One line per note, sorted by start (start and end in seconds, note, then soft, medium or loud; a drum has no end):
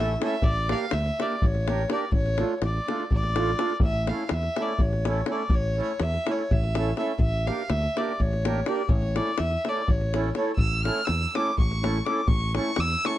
0.00 0.15 A1 medium
0.00 0.13 A3 medium
0.00 0.14 C#4 medium
0.00 0.14 E4 medium
0.00 0.15 A4 medium
0.00 0.19 E5 loud
0.20 0.35 A3 medium
0.20 0.35 C#4 medium
0.20 0.36 E4 medium
0.20 0.36 A4 medium
0.20 davul high medium
0.24 0.46 E5 medium
0.42 0.73 A1 medium
0.42 0.74 D5 loud
0.42 davul low loud
0.69 0.85 A#3 medium
0.69 0.85 D4 medium
0.69 0.86 G4 medium
0.69 0.86 A#4 medium
0.69 0.95 F5 loud
0.69 davul high medium
0.91 1.09 D2 medium
0.91 1.23 E5 loud
0.91 davul high medium
1.06 davul high soft
1.19 1.35 A#3 medium
1.19 1.35 D4 soft
1.19 1.36 G4 soft
1.19 1.36 A#4 medium
1.19 1.47 D5 medium
1.19 davul high medium
1.32 davul high soft
1.42 1.84 A1 medium
1.42 1.94 C#5 loud
1.42 davul low medium
1.55 davul high soft
1.67 1.82 A#3 medium
1.67 1.83 D4 medium
1.67 1.83 G4 medium
1.67 1.84 A#4 medium
1.67 davul high medium
1.89 2.04 A#3 medium
1.89 2.05 D4 medium
1.89 2.05 G4 medium
1.89 2.05 A#4 medium
1.89 2.12 D5 medium
1.89 davul high medium
2.12 2.42 A1 medium
2.12 2.59 C#5 medium
2.12 davul low medium
2.26 davul high soft
2.38 2.54 A3 medium
2.38 2.54 D4 medium
2.38 2.54 F4 medium
2.38 2.54 A4 medium
2.38 davul high medium
2.62 2.78 A1 medium
2.62 3.10 D5 medium
2.62 davul high medium
2.76 davul high soft
2.88 3.04 A3 medium
2.88 3.04 D4 medium
2.88 3.04 F4 medium
2.88 3.04 A4 medium
2.88 davul high medium
3.00 davul high soft
3.11 3.53 A1 medium
3.11 3.77 D5 medium
3.11 davul low medium
3.23 davul high soft
3.36 3.51 A3 medium
3.36 3.51 D4 medium
3.36 3.52 F4 soft
3.36 3.52 A4 medium
3.36 davul high medium
3.48 davul high soft
3.56 3.72 A3 medium
3.56 3.73 D4 medium
3.56 3.73 F4 medium
3.56 3.73 A4 medium
3.56 davul high medium
3.70 davul high soft
3.80 4.11 A1 medium
3.80 4.10 E5 loud
3.80 davul low loud
4.07 4.23 A3 medium
4.07 4.23 C#4 soft
4.07 4.23 E4 medium
4.07 4.24 A4 medium
4.07 4.26 F5 medium
4.07 davul high medium
4.26 4.36 F5 medium
4.26 davul high medium
4.31 4.47 E2 medium
4.31 4.64 E5 loud
4.43 davul high soft
4.56 4.73 A3 medium
4.56 4.73 C#4 soft
4.56 4.74 E4 medium
4.56 4.74 A4 medium
4.56 davul high medium
4.62 4.83 D5 medium
4.69 davul high soft
4.79 5.21 A1 medium
4.79 5.33 C#5 medium
4.79 davul low medium
4.93 davul high soft
5.05 5.21 A3 medium
5.05 5.21 C#4 medium
5.05 5.21 E4 medium
5.05 5.22 A4 medium
5.05 davul high medium
5.26 5.43 A3 medium
5.26 5.43 C#4 medium
5.26 5.43 E4 medium
5.26 5.44 A4 medium
5.26 davul high medium
5.32 5.57 D5 medium
5.50 5.80 A1 medium
5.50 davul low medium
5.55 5.80 C#5 loud
5.76 5.92 A3 medium
5.76 5.92 C#4 soft
5.76 5.92 E4 medium
5.76 5.93 A4 medium
5.82 6.04 C#5 medium
6.00 6.17 E2 medium
6.00 6.33 E5 loud
6.00 davul high medium
6.14 davul high soft
6.26 6.42 A3 medium
6.26 6.42 C#4 soft
6.26 6.43 E4 medium
6.26 6.43 A4 medium
6.26 davul high medium
6.32 6.54 C#5 medium
6.39 davul high soft
6.51 6.92 A1 medium
6.51 6.97 E5 medium
6.51 davul low medium
6.64 davul high soft
6.75 6.90 A3 medium
6.75 6.91 C#4 medium
6.75 6.91 E4 medium
6.75 6.91 A4 medium
6.75 davul high medium
6.96 7.11 A3 medium
6.96 7.12 C#4 medium
6.96 7.12 E4 medium
6.96 7.12 A4 medium
6.96 7.18 E5 medium
6.96 davul high medium
7.19 7.49 A1 medium
7.19 7.48 E5 loud
7.19 davul low medium
7.47 7.62 A#3 medium
7.47 7.62 D4 soft
7.47 7.62 G4 medium
7.47 7.63 A#4 medium
7.47 7.72 F5 medium
7.47 davul high medium
7.70 7.86 D2 medium
7.70 7.99 E5 loud
7.70 davul high medium
7.83 davul high soft
7.96 8.12 A#3 medium
7.96 8.12 D4 medium
7.96 8.12 G4 medium
7.96 8.13 A#4 medium
7.96 8.22 D5 medium
7.96 davul high medium
8.09 davul high soft
8.20 8.61 A1 medium
8.20 8.70 C#5 medium
8.20 davul low medium
8.33 davul high soft
8.44 8.59 A#3 medium
8.44 8.60 D4 medium
8.44 8.60 G4 soft
8.44 8.60 A#4 medium
8.44 davul high medium
8.66 8.82 A#3 medium
8.66 8.82 D4 medium
8.66 8.82 G4 medium
8.66 8.83 A#4 medium
8.66 8.91 D5 medium
8.66 davul high medium
8.89 9.19 A1 loud
8.89 9.18 C#5 medium
8.89 davul low medium
9.02 davul high soft
9.15 9.31 A3 medium
9.15 9.31 C#4 medium
9.15 9.31 E4 medium
9.15 9.32 A4 medium
9.15 9.40 D5 medium
9.15 davul high medium
9.27 davul high soft
9.38 9.56 E2 medium
9.38 9.70 E5 loud
9.38 davul high medium
9.51 davul high soft
9.65 9.81 A3 medium
9.65 9.82 C#4 soft
9.65 9.82 E4 medium
9.65 9.82 A4 medium
9.65 9.91 D5 medium
9.65 davul high medium
9.77 davul high soft
9.88 10.31 A1 medium
9.88 10.35 C#5 medium
9.88 davul low medium
10.01 davul high soft
10.14 10.29 A3 medium
10.14 10.29 C#4 soft
10.14 10.29 E4 medium
10.14 10.30 A4 medium
10.14 davul high medium
10.24 davul high soft
10.35 10.51 A3 medium
10.35 10.51 C#4 medium
10.35 10.51 E4 medium
10.35 10.52 A4 medium
10.35 10.55 C#5 medium
10.35 davul high medium
10.56 10.89 A1 medium
10.56 10.85 E6 loud
10.56 davul low medium
10.84 11.00 A3 medium
10.84 11.01 C#4 medium
10.84 11.01 E4 medium
10.84 11.01 A4 medium
10.84 11.07 F6 loud
10.84 davul high medium
11.05 11.25 E2 medium
11.05 11.38 E6 loud
11.05 davul high medium
11.21 davul high soft
11.35 11.51 A3 medium
11.35 11.51 C#4 medium
11.35 11.52 E4 medium
11.35 11.51 A4 medium
11.35 11.58 D6 medium
11.35 davul high medium
11.47 davul high soft
11.58 12.00 A1 medium
11.58 12.07 C#6 medium
11.58 davul low medium
11.72 davul high soft
11.82 11.98 A3 medium
11.82 11.98 C#4 medium
11.82 11.98 E4 medium
11.82 11.99 A4 medium
11.82 davul high medium
12.05 12.20 A3 medium
12.05 12.21 C#4 medium
12.05 12.21 E4 medium
12.05 12.21 A4 medium
12.05 12.29 D6 medium
12.05 davul high medium
12.28 12.58 A1 loud
12.28 12.55 C#6 medium
12.28 davul low medium
12.55 12.71 A3 medium
12.55 12.71 C#4 medium
12.55 12.71 E4 medium
12.55 12.71 A4 medium
12.55 12.82 C#6 loud
12.55 davul high medium
12.76 12.95 E2 medium
12.76 davul high medium
12.81 13.08 E6 loud
12.91 davul high soft
13.05 13.18 A3 medium
13.05 13.18 C#4 medium
13.05 13.18 E4 medium
13.05 13.18 A4 medium
13.05 13.18 C#6 medium
13.05 davul high medium